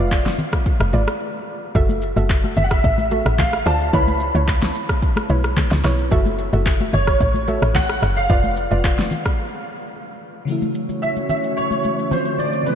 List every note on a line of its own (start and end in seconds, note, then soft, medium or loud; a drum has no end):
0.00 0.35 F1 loud
0.11 kick loud
0.11 clap loud
0.11 shaker medium
0.26 snare medium
0.26 high conga medium
0.26 shaker medium
0.39 low conga medium
0.39 shaker loud
0.53 kick medium
0.53 cross-stick loud
0.53 shaker medium
0.66 kick loud
0.66 shaker medium
0.80 0.92 F1 medium
0.80 cross-stick loud
0.80 high conga medium
0.80 shaker medium
0.93 1.06 G#1 medium
0.93 1.04 F4 medium
0.93 1.04 B4 medium
0.93 1.04 D5 medium
0.93 high conga medium
0.93 shaker medium
1.08 cross-stick loud
1.08 shaker medium
1.75 2.13 F#1 loud
1.75 2.13 F#4 loud
1.75 2.13 A4 medium
1.75 2.13 E5 loud
1.75 kick loud
1.75 shaker medium
1.89 high conga medium
1.89 shaker medium
2.02 shaker medium
2.16 2.53 F#1 medium
2.16 2.27 F#4 medium
2.16 2.27 A4 medium
2.16 2.27 E5 medium
2.16 high conga medium
2.16 shaker medium
2.30 kick loud
2.30 clap loud
2.30 shaker medium
2.44 high conga medium
2.44 shaker soft
2.57 2.82 F#1 loud
2.57 2.64 E5 medium
2.57 low conga medium
2.57 shaker loud
2.64 2.71 F#5 medium
2.71 3.35 E5 medium
2.71 kick loud
2.71 cross-stick loud
2.71 shaker medium
2.84 3.22 A1 loud
2.84 kick loud
2.84 shaker medium
2.98 high conga medium
2.98 shaker medium
3.11 3.22 F#4 medium
3.11 3.23 A4 medium
3.11 3.23 E5 medium
3.11 high conga medium
3.11 shaker medium
3.26 3.62 A1 medium
3.26 cross-stick loud
3.26 shaker soft
3.38 3.67 F5 medium
3.38 kick loud
3.38 clap loud
3.38 high conga medium
3.38 low conga medium
3.38 shaker medium
3.52 cross-stick medium
3.52 shaker medium
3.66 3.91 D2 medium
3.66 3.91 F4 medium
3.66 3.91 C5 medium
3.66 3.91 D5 medium
3.66 3.94 A5 loud
3.66 cross-stick medium
3.66 open hi-hat medium
3.66 shaker medium
3.80 shaker medium
3.93 4.31 C#2 loud
3.93 4.31 E4 loud
3.93 4.31 B4 medium
3.93 4.32 C#5 loud
3.93 4.44 B5 loud
3.93 kick loud
3.93 shaker medium
4.08 high conga medium
4.08 shaker soft
4.20 shaker medium
4.35 4.71 C#2 loud
4.35 4.45 E4 medium
4.35 4.45 B4 medium
4.35 4.45 C#5 medium
4.35 high conga medium
4.35 shaker medium
4.48 kick loud
4.48 clap loud
4.48 shaker medium
4.62 snare medium
4.62 high conga medium
4.62 shaker soft
4.75 shaker loud
4.89 kick loud
4.89 cross-stick loud
4.89 shaker medium
5.02 kick loud
5.02 shaker medium
5.16 cross-stick loud
5.16 high conga medium
5.16 shaker medium
5.29 5.54 B1 loud
5.29 5.41 E4 medium
5.29 5.41 B4 medium
5.29 5.41 C#5 medium
5.29 high conga medium
5.29 shaker medium
5.44 cross-stick loud
5.44 shaker medium
5.57 kick medium
5.57 clap medium
5.57 high conga medium
5.57 low conga medium
5.57 shaker medium
5.71 5.83 C#2 loud
5.71 snare medium
5.71 shaker medium
5.84 6.09 B1 medium
5.84 6.09 E4 medium
5.84 6.10 B4 medium
5.84 6.10 C#5 medium
5.84 cross-stick medium
5.84 snare medium
5.84 open hi-hat medium
5.84 shaker medium
5.99 shaker medium
6.11 6.49 F#1 loud
6.11 6.49 F#4 loud
6.11 6.50 A4 medium
6.11 6.50 E5 loud
6.11 kick loud
6.11 shaker medium
6.26 high conga medium
6.26 shaker soft
6.38 shaker medium
6.53 6.90 F#1 loud
6.53 6.63 F#4 medium
6.53 6.63 A4 medium
6.53 6.63 E5 medium
6.53 high conga medium
6.53 shaker medium
6.66 kick loud
6.66 clap loud
6.66 shaker medium
6.80 high conga medium
6.80 shaker soft
6.93 7.18 F#1 loud
6.93 7.78 C#5 medium
6.93 low conga medium
6.93 shaker loud
7.07 kick loud
7.07 cross-stick loud
7.07 shaker medium
7.21 7.58 A1 loud
7.21 kick loud
7.21 shaker medium
7.34 high conga medium
7.34 shaker medium
7.47 7.59 F#4 medium
7.47 7.59 A4 medium
7.47 7.59 E5 medium
7.47 high conga medium
7.47 shaker medium
7.62 7.99 A1 loud
7.62 cross-stick loud
7.62 shaker medium
7.75 8.18 F#5 loud
7.75 kick loud
7.75 clap loud
7.75 high conga medium
7.75 low conga medium
7.75 shaker medium
7.89 cross-stick loud
7.89 shaker medium
8.02 8.27 F#1 loud
8.02 cross-stick medium
8.02 open hi-hat medium
8.02 shaker medium
8.17 9.89 F5 loud
8.17 shaker medium
8.29 8.67 F1 loud
8.29 8.68 F4 loud
8.29 8.68 B4 medium
8.29 8.68 D5 loud
8.29 kick loud
8.29 shaker medium
8.44 high conga medium
8.44 shaker medium
8.56 shaker loud
8.71 9.08 F1 loud
8.71 8.81 F4 medium
8.71 8.81 B4 medium
8.71 8.81 D5 medium
8.71 high conga medium
8.71 shaker medium
8.84 kick loud
8.84 clap loud
8.84 shaker medium
8.98 snare medium
8.98 high conga medium
8.98 shaker soft
9.11 low conga medium
9.11 shaker medium
9.26 kick loud
9.26 cross-stick loud
9.26 shaker medium
10.45 12.07 C#3 medium
10.45 12.08 E3 medium
10.45 12.10 E3 medium
10.45 12.09 F#3 medium
10.45 12.10 A3 medium
10.45 12.10 C#4 medium
10.45 12.10 F#4 medium
10.45 12.10 C#5 medium
10.45 shaker medium
10.50 12.09 A3 medium
10.50 12.10 E4 medium
10.62 high conga medium
10.62 shaker soft
10.75 shaker medium
10.89 high conga medium
10.89 shaker medium
11.02 11.08 E5 loud
11.02 shaker medium
11.16 high conga medium
11.16 shaker soft
11.29 11.36 E5 loud
11.29 low conga medium
11.29 shaker medium
11.44 shaker medium
11.57 12.13 C#5 loud
11.57 shaker medium
11.71 high conga medium
11.71 shaker medium
11.84 high conga medium
11.84 shaker medium
11.99 shaker soft
12.10 12.66 D3 medium
12.10 12.66 F3 medium
12.10 12.66 A3 medium
12.10 12.67 C4 medium
12.10 12.67 F4 medium
12.10 12.40 C5 medium
12.10 high conga medium
12.10 low conga medium
12.10 shaker medium
12.25 shaker medium
12.38 12.67 D5 medium
12.38 high conga soft
12.38 shaker medium
12.53 shaker medium
12.63 12.75 C#3 medium
12.63 12.75 E3 medium
12.63 12.75 G#3 medium
12.63 12.75 B3 medium
12.63 12.75 C#4 medium
12.63 12.75 G#4 medium
12.63 12.75 B4 medium
12.63 12.75 C#5 medium
12.63 shaker medium
12.68 12.75 B3 medium
12.68 12.75 D#4 medium